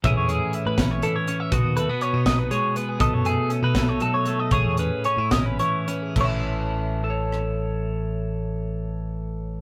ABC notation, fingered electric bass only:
X:1
M:6/8
L:1/16
Q:3/8=77
K:Alyd
V:1 name="Fingered electric bass" clef=bass
A,,, E,,2 z2 A,, A,,,2 z4 | B,,, D,,2 z2 B,, B,,,2 z4 | B,,, F,,2 z2 B,, B,,,2 z4 | A,,, E,,2 z2 A,, A,,,2 z4 |
A,,,12- | A,,,12 |]